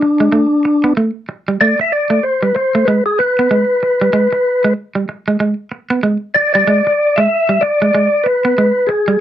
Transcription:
0.00 0.93 D4 loud
0.00 muted clean electric guitar stroke soft
0.20 0.29 G#3 medium
0.32 0.45 A3 medium
0.65 muted clean electric guitar stroke soft
0.84 0.92 B3 medium
0.97 1.10 A3 medium
1.29 muted clean electric guitar stroke soft
1.48 1.56 G3 medium
1.61 1.73 A3 medium
1.61 1.80 D5 loud
1.80 1.93 E5 loud
1.80 muted clean electric guitar stroke soft
1.92 2.25 D5 loud
2.10 2.19 A3 medium
2.23 2.43 C5 medium
2.42 2.51 G3 medium
2.42 2.55 B4 medium
2.55 2.88 C5 loud
2.55 muted clean electric guitar stroke soft
2.75 2.83 A3 medium
2.85 3.00 G#3 medium
2.85 3.04 B4 medium
3.06 3.19 G#4 medium
3.19 4.73 B4 loud
3.19 muted clean electric guitar stroke soft
3.39 3.47 B3 medium
3.51 3.63 G#3 medium
3.83 muted clean electric guitar stroke soft
4.01 4.10 G3 medium
4.13 4.26 G#3 medium
4.33 muted clean electric guitar stroke medium
4.64 4.73 G#3 medium
4.95 5.04 G3 medium
5.09 muted clean electric guitar stroke soft
5.28 5.36 G#3 medium
5.40 5.53 G#3 medium
5.72 muted clean electric guitar stroke soft
5.90 5.99 B3 medium
6.03 6.16 G#3 medium
6.34 6.53 D5 medium
6.34 muted clean electric guitar stroke soft
6.54 6.63 G3 medium
6.54 7.20 D5 loud
6.67 6.80 G#3 medium
6.87 muted clean electric guitar stroke soft
7.16 7.26 G#3 medium
7.16 7.63 E5 loud
7.49 7.58 G3 medium
7.61 8.27 D5 loud
7.61 muted clean electric guitar stroke soft
7.82 7.90 G#3 medium
7.95 8.07 G#3 medium
8.24 8.90 B4 loud
8.24 muted clean electric guitar stroke soft
8.45 8.53 B3 medium
8.58 8.71 G#3 medium
8.87 9.21 G#4 medium
8.87 muted clean electric guitar stroke medium
9.08 9.17 G3 medium

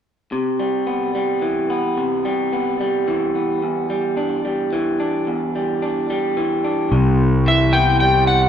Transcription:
0.32 1.70 C3 soft
0.60 1.15 G3 soft
0.87 1.70 B3 soft
1.15 2.25 G3 soft
1.42 3.07 E3 soft
1.70 2.52 B3 soft
1.98 3.35 C3 soft
2.25 2.80 G3 soft
2.53 3.35 B3 soft
2.80 3.89 G3 soft
3.08 4.20 E3 soft
3.35 4.16 B3 soft
3.63 5.00 E2 soft
3.90 4.45 G3 soft
4.17 4.99 D4 soft
4.45 5.54 G3 soft
4.73 6.10 E3 soft
5.00 5.81 D4 soft
5.27 6.64 E2 soft
5.55 6.09 G3 soft
5.82 6.63 D4 soft
6.10 6.92 G3 soft
6.37 6.92 E3 soft
6.64 6.92 D4 soft
6.92 8.49 C2 soft
6.92 8.29 C3 soft
7.47 8.49 E3 soft
7.47 7.73 E5 soft
7.73 8.49 B3 soft
7.73 7.99 G5 medium
8.00 8.49 G3 soft
8.00 8.27 G5 medium
8.27 8.49 F#5 medium

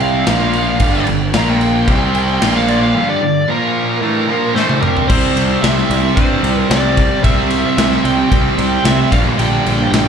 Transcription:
0.00 0.23 C2 medium
0.00 0.25 C3 medium
0.00 0.26 G3 medium
0.00 0.26 C4 medium
0.00 0.27 C4 loud
0.00 0.26 G4 medium
0.00 0.26 D5 medium
0.00 1.05 F5 loud
0.00 crash medium
0.26 0.77 A#1 loud
0.26 0.79 A#2 medium
0.26 0.80 F3 loud
0.26 0.80 A#3 medium
0.26 0.80 A#3 loud
0.26 0.80 F4 medium
0.26 0.80 C5 medium
0.26 snare loud
0.26 crash medium
0.53 crash medium
0.79 1.05 G1 loud
0.79 1.05 G2 loud
0.79 1.06 D3 loud
0.79 1.33 G3 medium
0.79 1.07 G3 loud
0.79 1.34 D4 medium
0.79 1.33 A4 medium
0.79 kick loud
0.79 crash medium
1.07 1.33 G1 medium
1.07 1.29 G2 medium
1.07 1.29 D3 medium
1.07 crash medium
1.33 1.85 A#1 medium
1.33 1.86 A#2 medium
1.33 1.87 F3 loud
1.33 1.87 A#3 medium
1.33 1.88 A#3 loud
1.33 1.87 F4 medium
1.33 1.88 C5 medium
1.33 1.50 A#5 medium
1.33 snare loud
1.33 crash medium
1.50 2.53 G5 loud
1.61 crash medium
1.87 2.38 C2 medium
1.87 2.40 C3 loud
1.87 2.41 G3 loud
1.87 2.41 C4 medium
1.87 2.42 C4 medium
1.87 2.41 G4 medium
1.87 2.41 D5 medium
1.87 kick loud
1.87 crash medium
2.15 crash medium
2.41 2.92 A#1 loud
2.41 2.94 A#2 medium
2.41 2.95 F3 medium
2.41 2.95 A#3 medium
2.41 2.95 A#3 loud
2.41 2.95 F4 medium
2.41 2.95 C5 medium
2.41 snare loud
2.41 crash medium
2.57 2.69 F5 medium
2.68 2.82 D5 medium
2.68 crash medium
2.82 3.08 F5 medium
2.95 3.21 G2 loud
2.95 3.22 D3 loud
2.95 3.48 G3 medium
2.95 3.22 G3 loud
2.95 3.49 D4 medium
2.95 3.49 A4 medium
3.10 3.48 D5 loud
3.22 3.44 G2 medium
3.22 3.44 D3 medium
3.48 4.01 A#2 loud
3.48 4.02 F3 loud
3.48 4.02 A#3 medium
3.48 4.02 A#3 loud
3.48 4.03 F4 medium
3.48 4.54 A#4 loud
3.48 4.03 C5 medium
4.02 4.28 A2 loud
4.02 4.29 E3 loud
4.02 5.09 G3 medium
4.02 4.29 A3 loud
4.02 5.09 D4 medium
4.02 5.09 A5 medium
4.29 4.55 A#2 medium
4.29 4.56 F3 loud
4.29 4.56 A#3 loud
4.55 4.82 A2 medium
4.55 4.83 E3 loud
4.55 4.83 A3 loud
4.55 4.81 C5 medium
4.55 snare medium
4.69 high tom medium
4.82 5.07 C3 loud
4.82 5.09 G3 loud
4.82 5.10 C4 loud
4.82 5.07 A#4 medium
4.82 mid tom medium
4.97 floor tom loud
5.08 5.29 C2 loud
5.08 6.15 C3 loud
5.08 6.18 G3 loud
5.08 9.09 C4 medium
5.08 9.08 G4 medium
5.08 5.64 C5 medium
5.08 9.09 D5 medium
5.08 kick loud
5.08 crash loud
5.12 6.17 C4 loud
5.36 5.56 C2 medium
5.36 ride medium
5.62 5.83 C2 medium
5.62 6.18 E5 medium
5.62 snare loud
5.62 ride loud
5.78 snare soft
5.90 6.09 C2 loud
5.90 ride medium
6.15 6.37 G2 medium
6.15 7.22 C3 medium
6.15 7.25 G3 medium
6.15 6.60 C5 medium
6.15 kick loud
6.15 ride loud
6.20 7.24 C4 medium
6.43 6.63 C2 medium
6.43 ride medium
6.60 6.72 A#4 medium
6.70 7.09 C2 loud
6.70 7.23 D5 loud
6.70 snare loud
6.70 ride loud
6.97 kick medium
6.97 ride medium
7.23 7.63 C2 medium
7.23 8.29 C3 medium
7.23 8.32 G3 loud
7.23 7.76 E5 loud
7.23 kick loud
7.23 ride loud
7.27 8.32 C4 loud
7.50 ride medium
7.77 7.97 C2 medium
7.77 8.05 E5 loud
7.77 snare loud
7.77 ride loud
7.92 snare soft
8.04 8.24 C2 loud
8.04 8.30 G5 medium
8.04 ride medium
8.30 8.51 C2 medium
8.30 9.10 C3 medium
8.30 9.11 G3 medium
8.30 9.12 C4 medium
8.30 8.87 G5 loud
8.30 kick loud
8.30 ride medium
8.58 8.77 C2 loud
8.58 ride medium
8.84 9.04 C2 loud
8.84 9.12 E5 loud
8.84 snare loud
8.84 ride loud
9.12 9.32 A#1 medium
9.12 10.08 G2 loud
9.12 10.08 D3 loud
9.12 10.08 G3 medium
9.12 10.08 G3 loud
9.12 10.08 D4 medium
9.12 10.08 A4 medium
9.12 9.19 F5 loud
9.12 kick loud
9.12 ride medium
9.38 9.58 A#1 loud
9.38 9.90 G5 loud
9.38 ride loud
9.66 9.85 A#1 medium
9.66 ride medium
9.92 10.08 A#1 medium
9.92 10.08 G5 loud
9.92 snare loud
9.92 ride loud

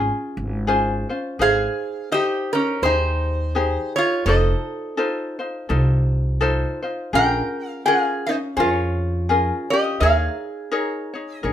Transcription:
0.00 0.67 C#4 medium
0.00 0.65 F4 medium
0.00 0.67 F4 medium
0.00 0.67 G#4 medium
0.00 0.65 C#5 medium
0.37 1.03 G#1 loud
0.67 1.09 C#4 medium
0.67 1.09 F4 loud
0.67 1.09 G#4 medium
0.67 1.08 C5 loud
1.09 1.39 C#4 soft
1.09 1.39 F4 medium
1.09 1.39 C5 soft
1.39 1.66 G#1 medium
1.39 2.11 D#4 medium
1.39 2.11 G#4 medium
1.39 2.08 G#4 medium
1.39 2.12 C5 medium
1.39 2.12 F5 loud
2.12 2.52 D#4 loud
2.12 2.53 G4 medium
2.12 2.51 G4 medium
2.12 2.52 C5 loud
2.12 2.50 D#5 loud
2.53 2.82 C#4 medium
2.53 2.83 D#4 soft
2.53 2.83 G4 soft
2.53 2.84 A#4 medium
2.53 2.83 C5 medium
2.82 3.76 D#2 loud
2.82 3.55 D#4 medium
2.82 3.93 D#4 medium
2.82 3.55 G4 medium
2.82 3.54 G#4 medium
2.82 3.95 C5 medium
2.82 3.56 C5 medium
3.55 3.96 D#4 medium
3.55 3.95 G4 medium
3.55 3.96 G#4 medium
3.55 3.97 C5 loud
3.96 4.26 D#4 soft
3.96 4.25 F4 medium
3.96 4.26 G4 soft
3.96 4.25 C#5 medium
4.26 4.53 F1 loud
4.26 4.96 D#4 medium
4.26 4.98 F4 medium
4.26 4.96 A4 medium
4.26 6.39 A4 medium
4.26 4.97 C5 medium
4.26 6.37 D#5 medium
4.97 5.39 D#4 medium
4.97 5.38 F4 medium
4.97 5.39 A4 medium
4.97 5.38 C5 medium
5.39 5.68 D#4 soft
5.39 5.69 F4 medium
5.39 5.69 C5 medium
5.69 6.63 C2 loud
5.69 6.40 D#4 medium
5.69 6.41 F4 medium
5.69 6.39 A4 medium
5.69 6.41 C5 medium
6.41 6.82 D#4 medium
6.41 6.82 F4 medium
6.41 6.82 A4 loud
6.41 6.81 C5 loud
6.83 7.13 D#4 soft
6.83 7.13 F4 medium
6.83 7.13 C5 medium
7.13 7.40 A#1 loud
7.13 7.86 C#4 medium
7.13 7.85 F4 medium
7.13 7.85 G#4 medium
7.13 7.87 A#4 medium
7.13 7.82 A#4 medium
7.13 7.69 G5 loud
7.69 7.85 F5 loud
7.85 8.27 C#4 medium
7.85 8.27 F4 medium
7.85 8.27 G#4 medium
7.85 8.25 G#4 medium
7.85 8.26 A#4 medium
7.85 8.28 F5 medium
8.26 8.56 C#4 medium
8.26 8.37 D#4 medium
8.26 8.57 F4 medium
8.26 8.57 A#4 medium
8.26 8.35 C5 medium
8.57 9.50 F2 loud
8.57 9.29 C#4 medium
8.57 9.29 F4 medium
8.57 9.67 F4 medium
8.57 9.29 G#4 medium
8.57 9.30 A#4 medium
8.57 8.68 C5 medium
8.68 9.73 C#5 medium
9.29 9.70 C#4 medium
9.29 9.70 F4 medium
9.29 9.70 G#4 medium
9.29 9.69 A#4 medium
9.70 10.01 C#4 soft
9.70 10.01 F4 soft
9.70 10.00 G4 medium
9.70 9.99 A#4 soft
9.70 10.00 D#5 medium
10.00 10.27 D#2 medium
10.00 10.71 D#4 medium
10.00 10.72 G#4 medium
10.00 11.53 G#4 medium
10.00 10.70 A#4 medium
10.00 10.71 C#5 medium
10.00 11.38 F5 medium
10.71 11.13 D#4 medium
10.71 11.14 G#4 medium
10.71 11.13 A#4 medium
10.71 11.12 C#5 medium
11.14 11.42 D#4 soft
11.14 11.43 G#4 medium
11.14 11.44 C#5 medium
11.38 11.53 D#5 medium
11.43 11.53 A#1 loud
11.43 11.53 D#4 medium
11.43 11.53 G#4 medium
11.43 11.53 A#4 medium
11.43 11.53 C#5 medium

